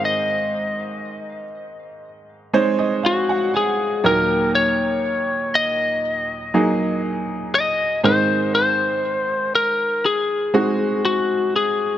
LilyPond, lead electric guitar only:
\new Staff \with { instrumentName = "Lead electric guitar" } { \time 4/4 \key ees \dorian \tempo 4 = 60 ees''2. ges'8 aes'8 | bes'8 des''4 ees''4. r8 ees''8 | c''8 c''4 bes'8 aes'4 ges'8 aes'8 | }